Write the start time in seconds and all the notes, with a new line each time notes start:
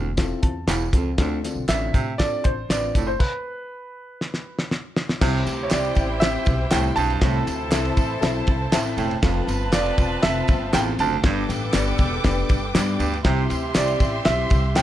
Already playing: E1 D2
0.17 C4 E4 F4 A4, kick, snare, closed hi-hat, tambourine
0.42 E2 A5, kick, closed hi-hat
0.67 E1 E2 E4 C5 F5, snare, clap, closed hi-hat, tambourine
0.93 C#2 F2 C4 A4, kick, closed hi-hat, tambourine
1.18 D2 D3 C4 D4 F4 A4, kick, snare, closed hi-hat, tambourine
1.43 C4 D4 F4 A4, snare, closed hi-hat, tambourine
1.55 B1
1.68 A1 C4 D4 F4 A4 E5, snare, clap, closed hi-hat, tambourine
1.94 A2 C3, kick, closed hi-hat, tambourine
2.18 C4 D4 F4 A4 D5, kick, snare, closed hi-hat, tambourine
2.44 A1 C5, kick, closed hi-hat
2.69 A1 C4 D4 F4 B4 D5, snare, clap, closed hi-hat, tambourine
2.95 F#1 A2, kick, closed hi-hat, tambourine
3.07 C5
3.19 B4, kick, crash
4.21 snare
4.34 snare
4.59 snare
4.71 snare
4.96 snare
5.09 snare
5.21 C2 C3 E3 C4 E4 G4 C5 E5 G5, kick, snare, crash, tambourine
5.46 D2, snare, ride, tambourine
5.63 C#5
5.71 C2 C4 E4 G4 C5 D5 E5, snare, clap, ride, tambourine
5.85 ride
5.95 A1, kick, ride, tambourine
6.20 C4 E4 G4 C5 E5, snare, ride, tambourine
6.45 B1, kick, ride, tambourine
6.71 C2 A2 C4 E4 G4 C5 E5 G5, snare, clap, ride, tambourine
6.96 B1 G2 A5, ride, tambourine
7.10 ride
7.21 C2 A2 C3 E3 C4 E4 A4 C5 E5 A5, kick, snare, ride, tambourine
7.47 D2, snare, ride, tambourine
7.71 C2 C4 E4 A4 C5 E5, snare, clap, ride, tambourine
7.85 ride
7.97 A1, kick, ride, tambourine
8.21 B1 C4 E4 A4 C5 E5, snare, ride, tambourine
8.47 C2, kick, ride
8.72 A1 C4 E4 A4 C5 E5 A5, snare, clap, ride, tambourine
8.97 E1 A2 G5, ride, tambourine
9.11 ride
9.23 F1 F2 F3 C4 F4 A4 B4 F5 A5, kick, snare, ride, tambourine
9.47 G1, snare, ride, tambourine
9.72 F1 C4 F4 A4 D5 F5, snare, clap, ride, tambourine
9.86 ride
9.98 E1, kick, ride, tambourine
10.22 F1 C4 F4 A4 E5 A5, snare, ride, tambourine
10.47 G1, kick, ride, tambourine
10.72 A1 E2 C4 F4 A4 C5 F5 G5, snare, clap, ride, tambourine
10.99 F#1 D2 A5, ride, tambourine
11.23 G1 G2 D3 B3 D4 G4 A4 B4 D5 G5 D6, kick, snare, ride
11.49 A1, snare, ride, tambourine
11.73 G1 B3 D4 G4 B4 D5, snare, clap, ride, tambourine
11.98 E1, kick, ride, tambourine
12.24 F1 B3 D4 G4 B4 D5, kick, snare, ride, tambourine
12.49 G1, kick, ride, tambourine
12.74 G2 B3 D4 G4 B4 D5, snare, clap, ride, tambourine
12.99 D2 G2, ride, tambourine
13.13 ride
13.24 C2 C3 E3 C4 E4 G4 C5 E5 C6, kick, snare, ride
13.50 D2, snare, ride, tambourine
13.74 C2 C4 E4 G4 C5 D5 E5, snare, clap, ride, tambourine
13.88 ride
14.00 A1, kick, ride, tambourine
14.24 B1 C4 E4 G4 C5 E5, snare, ride, tambourine
14.50 C2, kick, ride, tambourine
14.74 A2 C4 E4 G4 C5 G5, snare, clap, ride, tambourine